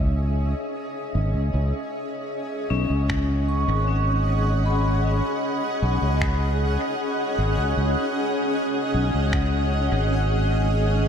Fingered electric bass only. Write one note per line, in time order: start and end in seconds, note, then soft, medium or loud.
0.00 0.53 C#2 medium
1.15 1.32 G#1 medium
1.34 1.51 C#2 medium
1.54 1.71 C#2 medium
2.70 2.88 B1 medium
2.90 3.64 C#2 medium
3.68 5.20 G#1 medium
5.82 6.00 B1 medium
6.02 6.76 C#2 medium
7.38 7.56 G#1 medium
7.58 7.75 C#2 medium
7.77 7.95 C#2 medium
8.94 9.12 B1 medium
9.14 9.88 C#2 medium
9.92 11.08 G#1 loud